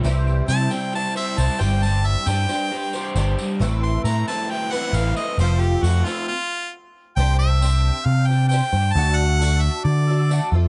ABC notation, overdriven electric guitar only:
X:1
M:4/4
L:1/8
Q:1/4=135
K:C
V:1 name="Overdriven electric guitar"
C,2 G, C E c E G, | G,2 G, D G c G G, | A,,2 A, C E B E A, | F,2 A, C z4 |
z8 | z8 |]